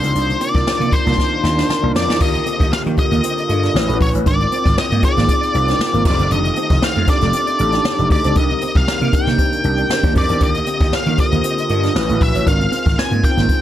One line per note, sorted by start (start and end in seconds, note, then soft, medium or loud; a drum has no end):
0.00 0.12 C#2 loud
0.00 2.18 C3 medium
0.00 2.18 D#3 medium
0.00 2.18 A#3 medium
0.00 0.13 C4 medium
0.00 0.46 D4 medium
0.00 0.46 D#4 medium
0.00 0.46 F4 medium
0.00 2.16 F4 medium
0.00 0.47 A#4 medium
0.00 0.43 C5 loud
0.00 2.18 D5 medium
0.00 closed hi-hat medium
0.15 0.33 C2 medium
0.15 0.26 D4 medium
0.15 closed hi-hat medium
0.15 muted conga soft
0.29 closed hi-hat soft
0.29 high conga medium
0.41 0.52 C4 medium
0.41 0.94 D5 medium
0.41 closed hi-hat medium
0.41 muted conga soft
0.54 0.63 C2 loud
0.54 0.99 D4 medium
0.54 0.99 D#4 medium
0.54 0.99 F4 medium
0.54 1.00 A#4 medium
0.54 muted clean electric guitar stroke soft
0.54 kick loud
0.54 closed hi-hat medium
0.54 high conga medium
0.67 snare loud
0.67 muted conga soft
0.80 0.89 C3 medium
0.80 0.90 A#3 medium
0.80 closed hi-hat soft
0.80 high conga medium
0.92 1.91 C5 medium
0.92 kick loud
0.92 closed hi-hat medium
0.92 muted conga soft
1.05 1.15 C2 medium
1.05 1.15 A#3 medium
1.05 1.39 D4 medium
1.05 1.39 D#4 medium
1.05 1.39 F4 medium
1.05 1.40 A#4 medium
1.05 snare soft
1.05 closed hi-hat soft
1.05 high conga medium
1.05 low conga medium
1.18 1.29 C4 medium
1.18 kick medium
1.18 snare medium
1.18 muted conga soft
1.31 muted clean electric guitar stroke soft
1.42 1.62 D#2 medium
1.42 1.78 D4 medium
1.42 1.78 D#4 medium
1.42 1.78 F4 medium
1.42 1.78 A#4 medium
1.42 snare medium
1.42 muted conga soft
1.42 high conga soft
1.57 1.66 D4 medium
1.57 snare medium
1.69 snare medium
1.69 muted conga soft
1.69 high conga medium
1.82 1.92 C2 medium
1.82 1.92 A#3 medium
1.82 2.16 D4 medium
1.82 2.16 D#4 medium
1.82 2.16 F4 medium
1.82 2.17 A#4 loud
1.82 low conga medium
1.95 2.05 F2 loud
1.95 2.22 D5 medium
1.95 snare loud
1.95 low conga medium
2.08 2.17 E2 medium
2.08 2.18 C4 medium
2.08 snare medium
2.20 2.39 D#2 loud
2.20 3.73 D3 medium
2.20 2.89 D3 medium
2.20 3.73 A#3 medium
2.20 2.31 D4 medium
2.20 3.73 F4 medium
2.20 2.89 F4 medium
2.20 3.73 G4 medium
2.20 2.89 G4 medium
2.20 2.89 A#4 medium
2.20 2.73 D#5 medium
2.20 kick loud
2.20 crash loud
2.35 closed hi-hat medium
2.35 high conga medium
2.46 2.57 C4 medium
2.46 closed hi-hat medium
2.59 2.69 D#2 medium
2.59 muted clean electric guitar stroke soft
2.59 kick loud
2.59 closed hi-hat medium
2.59 high conga medium
2.72 2.80 F5 medium
2.72 muted slap bass stroke soft
2.72 snare loud
2.72 muted conga soft
2.85 2.94 D#3 loud
2.85 2.95 A#3 medium
2.85 closed hi-hat soft
2.85 high conga medium
2.97 3.43 D3 medium
2.97 3.43 F4 medium
2.97 3.43 G4 medium
2.97 3.44 A#4 medium
2.97 3.97 D#5 medium
2.97 muted clean electric guitar stroke soft
2.97 kick loud
2.97 closed hi-hat medium
2.97 muted conga soft
3.11 3.20 D#2 medium
3.11 3.21 A#3 medium
3.11 closed hi-hat medium
3.11 high conga medium
3.11 low conga medium
3.23 3.35 C4 medium
3.23 closed hi-hat loud
3.38 muted clean electric guitar stroke soft
3.38 closed hi-hat medium
3.48 3.67 G2 medium
3.48 3.74 D4 medium
3.48 3.74 F4 medium
3.48 3.75 G4 medium
3.48 3.75 A4 medium
3.48 closed hi-hat medium
3.63 3.73 D4 medium
3.63 snare soft
3.63 closed hi-hat soft
3.74 3.85 A1 loud
3.74 4.25 A3 medium
3.74 3.86 C#4 medium
3.74 4.25 C#4 medium
3.74 3.87 E4 medium
3.74 4.25 F#4 medium
3.74 3.87 F#4 medium
3.74 3.87 B4 medium
3.74 snare loud
3.74 muted conga soft
3.74 high conga medium
3.87 3.97 A1 medium
3.87 3.98 A3 medium
3.87 4.10 C#4 medium
3.87 4.11 E4 medium
3.87 4.11 F#4 medium
3.87 4.11 B4 medium
3.87 closed hi-hat medium
3.87 low conga medium
4.01 4.10 A#1 medium
4.01 4.09 C#5 medium
4.01 muted clean electric guitar stroke soft
4.01 kick loud
4.01 open hi-hat medium
4.01 muted conga soft
4.01 low conga medium
4.13 4.23 A1 loud
4.13 4.24 C#4 medium
4.13 4.24 E4 medium
4.13 4.25 F#4 medium
4.13 4.25 B4 medium
4.13 closed hi-hat medium
4.25 4.44 G#1 medium
4.25 6.04 G#3 medium
4.25 4.94 C4 medium
4.25 6.04 C4 medium
4.25 4.37 D4 medium
4.25 4.94 D#4 medium
4.25 8.32 F4 medium
4.25 4.94 F4 medium
4.25 4.95 A#4 medium
4.25 4.75 D5 medium
4.25 kick loud
4.25 closed hi-hat medium
4.25 muted conga soft
4.41 closed hi-hat soft
4.41 high conga medium
4.52 4.63 C4 medium
4.52 closed hi-hat medium
4.65 4.74 G#1 loud
4.65 muted clean electric guitar stroke soft
4.65 kick loud
4.65 closed hi-hat medium
4.65 high conga medium
4.78 5.04 D#5 medium
4.78 muted slap bass stroke soft
4.78 snare loud
4.78 muted conga soft
4.90 5.00 G#2 medium
4.90 5.01 A#3 medium
4.90 closed hi-hat medium
4.90 high conga medium
5.02 5.48 C4 medium
5.02 5.48 D#4 medium
5.02 5.48 F4 medium
5.02 5.49 G#4 medium
5.02 6.02 D5 loud
5.02 kick loud
5.02 closed hi-hat medium
5.02 muted conga soft
5.17 5.25 G#1 medium
5.17 5.26 A#3 medium
5.17 snare soft
5.17 closed hi-hat soft
5.17 high conga medium
5.17 low conga medium
5.28 5.40 C4 medium
5.28 kick medium
5.28 closed hi-hat loud
5.28 muted conga soft
5.43 muted clean electric guitar stroke soft
5.43 closed hi-hat medium
5.54 5.72 C2 medium
5.54 5.88 C4 medium
5.54 5.89 D#4 medium
5.54 5.89 F4 medium
5.54 5.89 A#4 medium
5.54 closed hi-hat medium
5.54 muted conga soft
5.68 5.77 D4 medium
5.68 snare soft
5.68 closed hi-hat soft
5.79 snare loud
5.79 muted conga soft
5.79 high conga medium
5.93 6.02 G#1 medium
5.93 6.03 A#3 medium
5.93 6.04 C4 medium
5.93 6.04 D#4 medium
5.93 6.05 F4 medium
5.93 6.06 A#4 loud
5.93 closed hi-hat medium
5.93 low conga medium
6.05 6.15 F1 loud
6.05 8.34 D#3 medium
6.05 8.34 A3 medium
6.05 6.96 C4 medium
6.05 6.96 D#4 medium
6.05 6.97 G4 medium
6.05 6.12 G#4 medium
6.05 6.30 D5 medium
6.05 kick loud
6.05 crash medium
6.05 muted conga soft
6.05 low conga medium
6.12 7.00 A4 medium
6.19 6.28 F#1 medium
6.19 6.29 C4 medium
6.19 closed hi-hat medium
6.31 6.49 F1 loud
6.31 6.42 D4 medium
6.31 6.84 D#5 medium
6.31 closed hi-hat medium
6.31 muted conga soft
6.45 closed hi-hat soft
6.45 high conga medium
6.56 6.68 C4 medium
6.56 closed hi-hat medium
6.56 muted conga soft
6.70 6.79 F1 loud
6.70 muted clean electric guitar stroke soft
6.70 kick loud
6.70 closed hi-hat medium
6.70 high conga medium
6.82 7.09 F5 medium
6.82 muted slap bass stroke soft
6.82 snare loud
6.95 7.05 F2 loud
6.95 7.06 A3 medium
6.95 closed hi-hat soft
6.95 high conga medium
7.07 7.53 D4 medium
7.07 7.53 D#4 medium
7.07 7.54 G4 medium
7.07 7.54 A4 medium
7.07 8.07 D5 medium
7.07 kick loud
7.07 closed hi-hat medium
7.21 7.30 F1 medium
7.21 7.31 A3 medium
7.21 snare soft
7.21 closed hi-hat soft
7.21 high conga medium
7.21 low conga medium
7.33 7.44 C4 medium
7.33 closed hi-hat loud
7.33 muted conga soft
7.47 muted clean electric guitar stroke soft
7.47 closed hi-hat medium
7.58 7.78 A1 medium
7.58 7.93 D4 medium
7.58 7.93 D#4 medium
7.58 7.94 G4 medium
7.58 7.94 A4 medium
7.58 closed hi-hat medium
7.58 muted conga soft
7.72 7.82 D4 medium
7.72 snare soft
7.72 closed hi-hat medium
7.85 snare loud
7.85 muted conga soft
7.85 high conga medium
7.98 8.07 F1 medium
7.98 8.08 A3 medium
7.98 8.21 D4 medium
7.98 8.21 D#4 medium
7.98 8.21 G4 medium
7.98 8.21 A4 medium
7.98 closed hi-hat soft
7.98 low conga medium
8.10 8.20 D2 loud
8.10 8.37 D5 medium
8.10 muted clean electric guitar stroke soft
8.10 kick loud
8.10 open hi-hat medium
8.10 muted conga soft
8.10 low conga medium
8.23 8.33 C#2 medium
8.23 8.34 C4 medium
8.23 8.34 D4 medium
8.23 8.34 D#4 medium
8.23 8.35 G4 medium
8.23 8.35 C5 medium
8.23 closed hi-hat medium
8.35 8.54 C2 loud
8.35 10.39 C3 medium
8.35 10.39 D#3 medium
8.35 10.39 G3 medium
8.35 10.39 A#3 medium
8.35 9.04 C4 medium
8.35 8.47 D4 medium
8.35 9.04 D#4 medium
8.35 9.04 G4 medium
8.35 9.05 A#4 medium
8.35 8.77 D#5 medium
8.35 kick loud
8.35 closed hi-hat medium
8.35 muted conga soft
8.50 closed hi-hat soft
8.50 high conga medium
8.61 8.73 C4 medium
8.61 closed hi-hat medium
8.61 muted conga soft
8.75 8.84 C2 loud
8.75 9.15 F5 medium
8.75 muted clean electric guitar stroke soft
8.75 kick loud
8.75 closed hi-hat medium
8.75 high conga medium
8.88 snare loud
9.01 9.10 C3 loud
9.01 9.11 A#3 medium
9.01 closed hi-hat soft
9.01 high conga medium
9.12 9.58 D4 medium
9.12 9.59 D#4 medium
9.12 9.59 G4 medium
9.12 9.59 A#4 medium
9.12 10.12 G5 medium
9.12 muted clean electric guitar stroke soft
9.12 kick loud
9.12 closed hi-hat medium
9.27 9.35 C3 medium
9.27 9.36 A#3 medium
9.27 snare soft
9.27 closed hi-hat soft
9.27 high conga medium
9.27 low conga medium
9.38 9.50 C4 medium
9.38 kick medium
9.38 closed hi-hat medium
9.38 muted conga soft
9.52 muted clean electric guitar stroke soft
9.52 closed hi-hat medium
9.64 9.82 C2 medium
9.64 9.99 D4 medium
9.64 9.99 D#4 medium
9.64 9.99 G4 medium
9.64 9.99 A#4 medium
9.64 closed hi-hat medium
9.64 high conga soft
9.77 9.88 D4 medium
9.77 closed hi-hat soft
9.89 snare loud
9.89 high conga medium
10.03 10.12 D#2 medium
10.03 10.13 A#3 medium
10.03 10.26 D4 medium
10.03 10.26 D#4 medium
10.03 10.26 G4 medium
10.03 10.27 C5 medium
10.03 kick loud
10.03 closed hi-hat soft
10.03 low conga medium
10.15 10.25 F2 loud
10.15 10.43 D5 medium
10.15 muted clean electric guitar stroke soft
10.15 kick medium
10.15 open hi-hat medium
10.15 muted conga soft
10.15 low conga medium
10.29 10.38 E2 medium
10.29 10.39 C4 medium
10.29 10.40 D4 medium
10.29 10.40 D#4 medium
10.29 10.40 G4 medium
10.29 10.40 A#4 medium
10.29 closed hi-hat medium
10.40 10.59 D#2 medium
10.40 11.09 D3 medium
10.40 11.94 D3 medium
10.40 11.94 A#3 medium
10.40 10.52 D4 medium
10.40 11.10 F4 medium
10.40 11.94 F4 medium
10.40 11.10 G4 medium
10.40 11.94 G4 medium
10.40 10.55 D5 medium
10.40 kick loud
10.40 closed hi-hat medium
10.40 muted conga soft
10.55 10.95 D#5 medium
10.55 closed hi-hat medium
10.55 high conga medium
10.66 10.78 C4 medium
10.66 closed hi-hat medium
10.80 10.89 D#2 loud
10.80 muted clean electric guitar stroke soft
10.80 kick loud
10.80 closed hi-hat medium
10.80 high conga medium
10.93 11.20 F5 medium
10.93 muted slap bass stroke soft
10.93 snare loud
11.06 11.15 D#3 loud
11.06 11.16 A#3 medium
11.06 closed hi-hat medium
11.06 high conga medium
11.17 11.63 D3 medium
11.17 11.64 F4 medium
11.17 11.64 G4 medium
11.17 11.64 C5 medium
11.17 12.23 D#5 loud
11.17 muted clean electric guitar stroke soft
11.17 kick loud
11.17 closed hi-hat medium
11.32 11.41 D#2 medium
11.32 11.41 A#3 medium
11.32 closed hi-hat soft
11.32 high conga medium
11.32 low conga medium
11.44 11.55 C4 medium
11.44 closed hi-hat loud
11.44 muted conga soft
11.58 muted clean electric guitar stroke soft
11.58 closed hi-hat medium
11.68 11.88 G2 medium
11.68 11.95 D4 medium
11.68 11.95 F4 medium
11.68 11.95 G4 medium
11.68 11.95 A#4 medium
11.68 closed hi-hat medium
11.83 11.93 D4 medium
11.83 snare soft
11.83 closed hi-hat medium
11.94 12.05 A1 loud
11.94 12.46 A3 medium
11.94 12.07 C#4 medium
11.94 12.46 C#4 medium
11.94 12.07 E4 medium
11.94 12.07 F#4 medium
11.94 12.46 F#4 medium
11.94 12.08 B4 loud
11.94 snare loud
11.94 high conga medium
12.09 12.17 A1 medium
12.09 12.18 A3 medium
12.09 12.31 C#4 medium
12.09 12.31 E4 medium
12.09 12.32 F#4 medium
12.09 12.32 B4 medium
12.09 closed hi-hat medium
12.09 low conga medium
12.21 12.31 A#1 medium
12.21 12.46 E5 loud
12.21 muted clean electric guitar stroke soft
12.21 kick medium
12.21 open hi-hat medium
12.21 muted conga soft
12.21 low conga medium
12.34 12.43 A1 medium
12.34 12.45 C#4 medium
12.34 12.44 C#4 medium
12.34 12.45 E4 medium
12.34 12.45 F#4 medium
12.34 12.45 C#5 medium
12.34 closed hi-hat medium
12.46 12.65 G#1 loud
12.46 13.62 G#3 medium
12.46 13.15 C4 medium
12.46 13.62 C4 medium
12.46 12.57 D4 medium
12.46 13.15 D#4 medium
12.46 13.62 F4 medium
12.46 13.15 F4 medium
12.46 13.15 A#4 medium
12.46 13.00 F5 medium
12.46 kick loud
12.46 closed hi-hat medium
12.61 closed hi-hat soft
12.61 high conga medium
12.72 12.83 C4 medium
12.72 closed hi-hat medium
12.72 muted conga soft
12.86 12.94 G#1 loud
12.86 muted clean electric guitar stroke soft
12.86 kick loud
12.86 closed hi-hat medium
12.86 high conga medium
12.98 13.24 G#5 loud
12.98 muted slap bass stroke soft
12.98 snare loud
13.11 13.20 G#2 medium
13.11 13.21 A#3 medium
13.11 closed hi-hat medium
13.11 high conga medium
13.23 13.30 B3 medium
13.23 13.62 D#4 medium
13.23 13.62 F4 medium
13.23 13.62 A#4 medium
13.23 13.62 G5 loud
13.23 muted clean electric guitar stroke soft
13.23 kick loud
13.23 closed hi-hat medium
13.29 13.62 C4 medium
13.37 13.46 G#1 medium
13.37 13.46 A#3 medium
13.37 snare soft
13.37 closed hi-hat medium
13.37 high conga medium
13.37 low conga medium
13.49 13.60 C4 medium
13.49 kick medium
13.49 closed hi-hat medium
13.49 muted conga soft